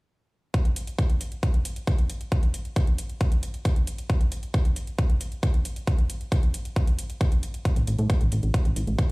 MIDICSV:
0, 0, Header, 1, 3, 480
1, 0, Start_track
1, 0, Tempo, 444444
1, 584, Time_signature, 4, 2, 24, 8
1, 9846, End_track
2, 0, Start_track
2, 0, Title_t, "Analog synth bass"
2, 0, Program_c, 0, 38
2, 8384, Note_on_c, 0, 33, 82
2, 8477, Note_off_c, 0, 33, 0
2, 8505, Note_on_c, 0, 33, 92
2, 8597, Note_off_c, 0, 33, 0
2, 8625, Note_on_c, 0, 45, 84
2, 8717, Note_off_c, 0, 45, 0
2, 8864, Note_on_c, 0, 33, 83
2, 8957, Note_off_c, 0, 33, 0
2, 8984, Note_on_c, 0, 33, 98
2, 9077, Note_off_c, 0, 33, 0
2, 9104, Note_on_c, 0, 33, 85
2, 9197, Note_off_c, 0, 33, 0
2, 9344, Note_on_c, 0, 33, 83
2, 9437, Note_off_c, 0, 33, 0
2, 9464, Note_on_c, 0, 33, 95
2, 9557, Note_off_c, 0, 33, 0
2, 9584, Note_on_c, 0, 33, 85
2, 9677, Note_off_c, 0, 33, 0
2, 9846, End_track
3, 0, Start_track
3, 0, Title_t, "Drums"
3, 584, Note_on_c, 9, 36, 104
3, 584, Note_on_c, 9, 42, 61
3, 692, Note_off_c, 9, 36, 0
3, 692, Note_off_c, 9, 42, 0
3, 704, Note_on_c, 9, 42, 36
3, 812, Note_off_c, 9, 42, 0
3, 824, Note_on_c, 9, 42, 83
3, 932, Note_off_c, 9, 42, 0
3, 944, Note_on_c, 9, 42, 35
3, 1052, Note_off_c, 9, 42, 0
3, 1064, Note_on_c, 9, 36, 103
3, 1064, Note_on_c, 9, 42, 62
3, 1172, Note_off_c, 9, 36, 0
3, 1172, Note_off_c, 9, 42, 0
3, 1184, Note_on_c, 9, 42, 36
3, 1292, Note_off_c, 9, 42, 0
3, 1304, Note_on_c, 9, 42, 84
3, 1412, Note_off_c, 9, 42, 0
3, 1423, Note_on_c, 9, 42, 37
3, 1531, Note_off_c, 9, 42, 0
3, 1543, Note_on_c, 9, 42, 59
3, 1544, Note_on_c, 9, 36, 107
3, 1651, Note_off_c, 9, 42, 0
3, 1652, Note_off_c, 9, 36, 0
3, 1664, Note_on_c, 9, 42, 36
3, 1772, Note_off_c, 9, 42, 0
3, 1784, Note_on_c, 9, 42, 88
3, 1892, Note_off_c, 9, 42, 0
3, 1904, Note_on_c, 9, 42, 36
3, 2012, Note_off_c, 9, 42, 0
3, 2024, Note_on_c, 9, 36, 106
3, 2024, Note_on_c, 9, 42, 61
3, 2132, Note_off_c, 9, 36, 0
3, 2132, Note_off_c, 9, 42, 0
3, 2144, Note_on_c, 9, 42, 37
3, 2252, Note_off_c, 9, 42, 0
3, 2264, Note_on_c, 9, 42, 86
3, 2372, Note_off_c, 9, 42, 0
3, 2384, Note_on_c, 9, 42, 38
3, 2492, Note_off_c, 9, 42, 0
3, 2504, Note_on_c, 9, 36, 111
3, 2504, Note_on_c, 9, 42, 60
3, 2612, Note_off_c, 9, 36, 0
3, 2612, Note_off_c, 9, 42, 0
3, 2623, Note_on_c, 9, 42, 35
3, 2731, Note_off_c, 9, 42, 0
3, 2743, Note_on_c, 9, 42, 81
3, 2851, Note_off_c, 9, 42, 0
3, 2863, Note_on_c, 9, 42, 35
3, 2971, Note_off_c, 9, 42, 0
3, 2983, Note_on_c, 9, 42, 60
3, 2984, Note_on_c, 9, 36, 111
3, 3091, Note_off_c, 9, 42, 0
3, 3092, Note_off_c, 9, 36, 0
3, 3103, Note_on_c, 9, 42, 35
3, 3211, Note_off_c, 9, 42, 0
3, 3223, Note_on_c, 9, 42, 82
3, 3331, Note_off_c, 9, 42, 0
3, 3343, Note_on_c, 9, 42, 37
3, 3451, Note_off_c, 9, 42, 0
3, 3463, Note_on_c, 9, 42, 58
3, 3464, Note_on_c, 9, 36, 113
3, 3571, Note_off_c, 9, 42, 0
3, 3572, Note_off_c, 9, 36, 0
3, 3583, Note_on_c, 9, 42, 36
3, 3691, Note_off_c, 9, 42, 0
3, 3703, Note_on_c, 9, 42, 85
3, 3811, Note_off_c, 9, 42, 0
3, 3823, Note_on_c, 9, 42, 35
3, 3931, Note_off_c, 9, 42, 0
3, 3943, Note_on_c, 9, 42, 59
3, 3944, Note_on_c, 9, 36, 107
3, 4051, Note_off_c, 9, 42, 0
3, 4052, Note_off_c, 9, 36, 0
3, 4063, Note_on_c, 9, 42, 37
3, 4171, Note_off_c, 9, 42, 0
3, 4183, Note_on_c, 9, 42, 81
3, 4291, Note_off_c, 9, 42, 0
3, 4303, Note_on_c, 9, 42, 37
3, 4411, Note_off_c, 9, 42, 0
3, 4423, Note_on_c, 9, 42, 58
3, 4424, Note_on_c, 9, 36, 113
3, 4531, Note_off_c, 9, 42, 0
3, 4532, Note_off_c, 9, 36, 0
3, 4543, Note_on_c, 9, 42, 34
3, 4651, Note_off_c, 9, 42, 0
3, 4663, Note_on_c, 9, 42, 80
3, 4771, Note_off_c, 9, 42, 0
3, 4783, Note_on_c, 9, 42, 34
3, 4891, Note_off_c, 9, 42, 0
3, 4903, Note_on_c, 9, 42, 57
3, 4904, Note_on_c, 9, 36, 112
3, 5011, Note_off_c, 9, 42, 0
3, 5012, Note_off_c, 9, 36, 0
3, 5023, Note_on_c, 9, 42, 34
3, 5131, Note_off_c, 9, 42, 0
3, 5143, Note_on_c, 9, 42, 82
3, 5251, Note_off_c, 9, 42, 0
3, 5263, Note_on_c, 9, 42, 35
3, 5371, Note_off_c, 9, 42, 0
3, 5383, Note_on_c, 9, 42, 57
3, 5384, Note_on_c, 9, 36, 114
3, 5491, Note_off_c, 9, 42, 0
3, 5492, Note_off_c, 9, 36, 0
3, 5504, Note_on_c, 9, 42, 35
3, 5612, Note_off_c, 9, 42, 0
3, 5624, Note_on_c, 9, 42, 83
3, 5732, Note_off_c, 9, 42, 0
3, 5744, Note_on_c, 9, 42, 33
3, 5852, Note_off_c, 9, 42, 0
3, 5864, Note_on_c, 9, 36, 110
3, 5864, Note_on_c, 9, 42, 57
3, 5972, Note_off_c, 9, 36, 0
3, 5972, Note_off_c, 9, 42, 0
3, 5984, Note_on_c, 9, 42, 35
3, 6092, Note_off_c, 9, 42, 0
3, 6104, Note_on_c, 9, 42, 81
3, 6212, Note_off_c, 9, 42, 0
3, 6224, Note_on_c, 9, 42, 35
3, 6332, Note_off_c, 9, 42, 0
3, 6344, Note_on_c, 9, 36, 113
3, 6344, Note_on_c, 9, 42, 57
3, 6452, Note_off_c, 9, 36, 0
3, 6452, Note_off_c, 9, 42, 0
3, 6464, Note_on_c, 9, 42, 33
3, 6572, Note_off_c, 9, 42, 0
3, 6584, Note_on_c, 9, 42, 80
3, 6692, Note_off_c, 9, 42, 0
3, 6705, Note_on_c, 9, 42, 34
3, 6813, Note_off_c, 9, 42, 0
3, 6824, Note_on_c, 9, 36, 113
3, 6825, Note_on_c, 9, 42, 57
3, 6932, Note_off_c, 9, 36, 0
3, 6933, Note_off_c, 9, 42, 0
3, 6945, Note_on_c, 9, 42, 34
3, 7053, Note_off_c, 9, 42, 0
3, 7064, Note_on_c, 9, 42, 80
3, 7172, Note_off_c, 9, 42, 0
3, 7185, Note_on_c, 9, 42, 35
3, 7293, Note_off_c, 9, 42, 0
3, 7304, Note_on_c, 9, 36, 113
3, 7304, Note_on_c, 9, 42, 57
3, 7412, Note_off_c, 9, 36, 0
3, 7412, Note_off_c, 9, 42, 0
3, 7424, Note_on_c, 9, 42, 34
3, 7532, Note_off_c, 9, 42, 0
3, 7544, Note_on_c, 9, 42, 82
3, 7652, Note_off_c, 9, 42, 0
3, 7664, Note_on_c, 9, 42, 33
3, 7772, Note_off_c, 9, 42, 0
3, 7784, Note_on_c, 9, 36, 114
3, 7784, Note_on_c, 9, 42, 55
3, 7892, Note_off_c, 9, 36, 0
3, 7892, Note_off_c, 9, 42, 0
3, 7904, Note_on_c, 9, 42, 34
3, 8012, Note_off_c, 9, 42, 0
3, 8024, Note_on_c, 9, 42, 78
3, 8132, Note_off_c, 9, 42, 0
3, 8145, Note_on_c, 9, 42, 36
3, 8253, Note_off_c, 9, 42, 0
3, 8264, Note_on_c, 9, 36, 104
3, 8264, Note_on_c, 9, 42, 58
3, 8372, Note_off_c, 9, 36, 0
3, 8372, Note_off_c, 9, 42, 0
3, 8384, Note_on_c, 9, 42, 34
3, 8492, Note_off_c, 9, 42, 0
3, 8504, Note_on_c, 9, 42, 82
3, 8612, Note_off_c, 9, 42, 0
3, 8624, Note_on_c, 9, 42, 34
3, 8732, Note_off_c, 9, 42, 0
3, 8744, Note_on_c, 9, 36, 111
3, 8744, Note_on_c, 9, 42, 57
3, 8852, Note_off_c, 9, 36, 0
3, 8852, Note_off_c, 9, 42, 0
3, 8864, Note_on_c, 9, 42, 33
3, 8972, Note_off_c, 9, 42, 0
3, 8984, Note_on_c, 9, 42, 80
3, 9092, Note_off_c, 9, 42, 0
3, 9104, Note_on_c, 9, 42, 36
3, 9212, Note_off_c, 9, 42, 0
3, 9224, Note_on_c, 9, 36, 110
3, 9224, Note_on_c, 9, 42, 58
3, 9332, Note_off_c, 9, 36, 0
3, 9332, Note_off_c, 9, 42, 0
3, 9344, Note_on_c, 9, 42, 35
3, 9452, Note_off_c, 9, 42, 0
3, 9464, Note_on_c, 9, 42, 82
3, 9572, Note_off_c, 9, 42, 0
3, 9584, Note_on_c, 9, 42, 35
3, 9692, Note_off_c, 9, 42, 0
3, 9704, Note_on_c, 9, 36, 107
3, 9704, Note_on_c, 9, 42, 58
3, 9812, Note_off_c, 9, 36, 0
3, 9812, Note_off_c, 9, 42, 0
3, 9846, End_track
0, 0, End_of_file